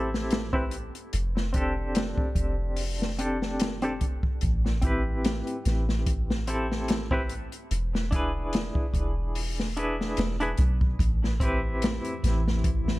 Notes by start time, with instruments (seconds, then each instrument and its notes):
Already playing: 808-style bass A1, clean electric guitar C4 E4 G4 A4
0.14 snare
0.31 snare, closed hi-hat
0.53 clean electric guitar C4 E4 G4 B4, kick
0.71 closed hi-hat
0.95 closed hi-hat
1.13 808-style bass F1, closed hi-hat
1.37 snare
1.53 clean electric guitar C4 D4 G4, kick, closed hi-hat
1.57 clean electric guitar A4
1.95 snare, closed hi-hat
2.18 kick
2.35 808-style bass F1, kick, closed hi-hat
2.76 open hi-hat
3.02 snare
3.19 clean electric guitar C4 D4 G4 A4, closed hi-hat
3.42 snare
3.60 snare, closed hi-hat
3.82 clean electric guitar C4 D4 G4 A4, closed hi-hat
4.01 kick, closed hi-hat
4.23 kick
4.41 808-style bass A1, kick, closed hi-hat
4.66 snare
4.82 clean electric guitar C4 E4 G4, kick, closed hi-hat
4.87 clean electric guitar B4
5.25 snare, closed hi-hat
5.47 closed hi-hat
5.65 808-style bass A1, snare, closed hi-hat
5.89 snare
6.07 kick, closed hi-hat
6.30 snare
6.47 clean electric guitar C4 E4 G4 A4, closed hi-hat
6.72 snare
6.88 snare, closed hi-hat
7.11 clean electric guitar C4 E4 G4 B4, kick
7.29 closed hi-hat
7.52 closed hi-hat
7.71 808-style bass E1, closed hi-hat
7.95 snare
8.11 clean electric guitar D4 E4 G#4, kick, closed hi-hat
8.16 clean electric guitar B4
8.53 snare, closed hi-hat
8.75 kick
8.94 808-style bass E1, kick, closed hi-hat
9.35 open hi-hat
9.60 snare
9.77 clean electric guitar D4 E4 G#4 B4, closed hi-hat
10.01 snare
10.17 808-style bass E1, snare, closed hi-hat
10.40 clean electric guitar D4 E4 G#4 B4, closed hi-hat
10.57 808-style bass B1, kick, closed hi-hat
10.81 kick
10.99 808-style bass A1, ambient pad E3 E4, kick, closed hi-hat
11.24 snare
11.40 clean electric guitar C4 E4 G4, kick, closed hi-hat
11.45 clean electric guitar B4
11.82 snare, closed hi-hat
12.05 closed hi-hat
12.24 808-style bass A1, snare, closed hi-hat
12.48 snare
12.64 kick, closed hi-hat
12.88 snare